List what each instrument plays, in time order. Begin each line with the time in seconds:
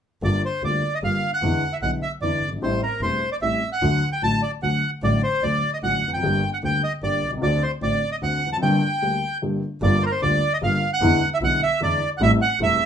0.22 double bass G1, upright piano G1 G2 D3 G3 A#3 F4, bandoneon D5
0.45 bandoneon C5
0.62 double bass D2, upright piano D2 D3 G3 A#3 F4, bandoneon D5
0.95 bandoneon D#5
1.02 double bass G1, upright piano G1 G2 D3 G3 A#3 F4, bandoneon F5
1.34 bandoneon F#5
1.42 double bass E2, upright piano E2 D3 E3 G#3 B3 E4
1.73 bandoneon E5
1.81 double bass B1, upright piano B1 B2 D3 G#3 B3 E4, bandoneon F#5
2.03 bandoneon E5
2.21 double bass E2, upright piano E2 D3 E3 G#3 B3 E4, bandoneon D5
2.41 double bass G1
2.48 upright piano F#1
2.53 upright piano G1
2.57 upright piano G#1, double bass A1
2.62 upright piano A1 A2 C3 G3 A3 E4, bandoneon C5
2.83 bandoneon A#4
3.01 double bass E1, upright piano E1 E2 C3 G3 A3 E4, bandoneon C5
3.32 bandoneon D5
3.41 double bass A1, upright piano A1 A2 C3 G3 A3 E4, bandoneon E5
3.72 bandoneon F#5
3.82 double bass D2, upright piano D2 D3 F#3 A3 F#4
4.13 bandoneon G5
4.22 double bass A1, upright piano A1 A2 D3 F#3 A3 F#4, bandoneon A5
4.43 bandoneon D5
4.62 double bass D2, upright piano D2 D3 F#3 A3 F#4, bandoneon F#5
5.02 double bass A1, upright piano A1 A2 D3 F#3 A3 F#4, bandoneon D5
5.23 bandoneon C5
5.42 double bass D2, upright piano D2 D3 F#3 A3 F#4, bandoneon D5
5.74 bandoneon D#5
5.82 double bass A1, upright piano A1 A2 D3 F#3 A3 F#4, bandoneon F#5
6.03 double bass F1
6.08 upright piano E2
6.13 upright piano F2, bandoneon G5
6.17 upright piano F#2
6.23 double bass G1, upright piano G1 G2 D3 G3 A#3 G4
6.54 bandoneon F#5
6.63 double bass D2, upright piano D2 D3 G3 A#3 G4, bandoneon G5
6.84 bandoneon D#5
7.03 double bass G1, upright piano G1 G2 D3 G3 A#3 G4, bandoneon D5
7.23 double bass C2
7.28 upright piano B1
7.32 upright piano C2
7.37 upright piano C#2
7.42 upright piano D2 D3 A3 C4 F#4, double bass D2, bandoneon D5
7.63 bandoneon C5
7.81 upright piano A1 A2 D3 A3 C4 F#4, double bass A1, bandoneon D5
8.12 bandoneon D#5
8.22 double bass D2, upright piano D2 D3 A3 C4 F#4, bandoneon F#5
8.46 upright piano E2
8.52 upright piano F2, bandoneon A5
8.57 upright piano F#2
8.62 upright piano G1 G2 D3 G3 A#3 G4, bandoneon G5
9.02 upright piano D2 D3 G3 A#3 G4
9.42 upright piano G1 G2 D3 G3 A#3 G4
9.82 double bass G1, upright piano G1 G2 D3 G3 A#3 F4, bandoneon D5
10.03 bandoneon A#4 C5
10.11 bandoneon C5
10.22 double bass D2, upright piano D2 D3 G3 A#3 F4, bandoneon D5
10.53 bandoneon D#5
10.61 double bass G1, upright piano G1 G2 D3 G3 A#3 F4, bandoneon F5
10.93 bandoneon F#5
11.01 double bass E2, upright piano E2 D3 E3 G#3 B3 E4
11.34 bandoneon E5
11.41 upright piano B1 B2 D3 G#3 B3 E4, double bass B1, bandoneon F#5
11.63 bandoneon E5
11.80 upright piano E2 D3 E3 G#3 B3 E4, double bass E2, bandoneon D5
12.18 upright piano A1 A2 C3 G3 A3 E4, double bass A1, bandoneon F#5
12.23 bandoneon E5
12.42 bandoneon F#5
12.60 upright piano E1 E2 C3 G3 A3 E4, double bass E1, bandoneon E5